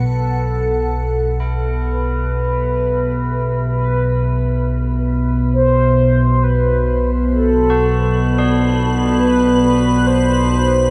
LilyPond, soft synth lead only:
\new Staff \with { instrumentName = "Soft synth lead" } { \time 4/4 \key b \phrygian \tempo 4 = 66 a'4. r8 b'2 | b'4. r8 c''4 b'8. r16 | a'4. r8 b'8 b'8 c''4 | }